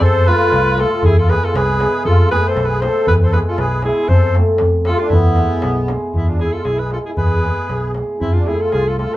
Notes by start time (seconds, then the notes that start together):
0.01 F2 A4 C5, darbuka dum
0.16 darbuka tek
0.26 A3 C4 F4 A4 B4, darbuka tek
0.41 darbuka tek
0.52 C2, darbuka tek
0.78 A3 C4 F4 A4, darbuka tek
0.92 darbuka tek
1.03 E2 E4 G#4, darbuka dum
1.18 F4 A4, darbuka tek
1.28 G#3 B3 E4 G#4 B4, darbuka tek
1.43 F4 A4
1.54 C2 G#4 B4, darbuka tek
1.69 darbuka tek
1.80 G#3 B3 E4 G#4, darbuka tek
2.05 F2 F4 A4, darbuka dum
2.20 darbuka tek
2.31 A3 C4 F4 G#4 A4 B4, darbuka tek
2.45 C5, darbuka tek
2.50 A4
2.56 B1, darbuka tek
2.65 G#4 B4
2.81 A3 C4 F4 A4 C5, darbuka tek
2.86 A4
2.96 darbuka tek
3.07 E2 B4, darbuka dum
3.11 G#4
3.22 A4 C5, darbuka tek
3.32 G#3 B3 E4 G#4 B4, darbuka tek
3.46 F4 A4, darbuka tek
3.58 B1 G#4 B4, darbuka tek
3.82 G#3 B3 E4 G#4, darbuka tek
4.08 F2 A4 C5, darbuka dum
4.35 A3 C4 F4 A4, darbuka tek
4.48 darbuka tek
4.58 F2, darbuka tek
4.85 A3 C4 F4 A4, darbuka tek
4.98 D4 F4, darbuka tek
5.10 E2 B3 E4, darbuka dum
5.24 darbuka tek
5.36 G#3 B3 E4 G#4, darbuka tek
5.62 B1, darbuka tek
5.77 darbuka tek
5.88 G#3 B3 E4 G#4, darbuka tek
6.02 darbuka tek
6.13 E2 B3 E4, darbuka dum
6.28 D4 F4
6.39 G#3 B3 E4 G#4, darbuka tek
6.53 F4 A4
6.65 B1 E4 G#4, darbuka tek
6.79 G#4 B4, darbuka tek
6.91 G#3 B3 E4 F4 G#4 A4, darbuka tek
7.05 E4 G#4
7.17 E2 G#4 B4, darbuka dum
7.44 G#3 B3 E4 G#4, darbuka tek
7.70 B1, darbuka tek
7.83 darbuka tek
7.94 G#3 B3 E4 G#4, darbuka tek
8.19 F2 C4 E4, darbuka dum
8.33 D4 F4
8.46 A3 C4 E4 F4 G#4 A4, darbuka tek
8.60 F4 A4
8.72 C2 F4 G#4, darbuka tek
8.85 F4 A4
8.98 A3 C4 F4 A4, darbuka tek
9.12 A4